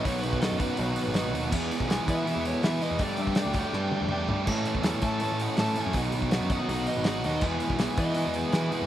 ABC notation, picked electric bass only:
X:1
M:4/4
L:1/16
Q:1/4=163
K:Bmix
V:1 name="Picked electric bass" clef=bass
B,,,2 B,,,3 F,,2 z B,,,2 z G,,,3 D,,2 | E,,2 z B,,,2 z E,3 E,,2 z E,2 z E,, | =G,,2 G,,3 =D,,2 z G,,2 z E,,3 G,,2 | A,,2 z E,,2 z A,,3 A,,2 z A,,2 z F,, |
B,,,2 B,,,3 F,,2 z B,,,2 z G,,,3 D,,2 | E,,2 z B,,,2 z E,3 E,,2 z E,2 z F,, |]